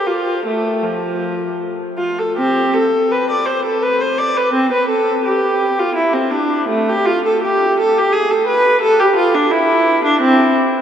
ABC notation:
X:1
M:3/4
L:1/16
Q:1/4=84
K:F
V:1 name="Viola"
F2 A,2 F,4 z2 F A | [K:C] [CG]2 A2 B d c A B c d B | C B A2 G3 F E C D2 | A, G F A G2 A G _A =A B2 |
A G F D E3 D C2 z2 |]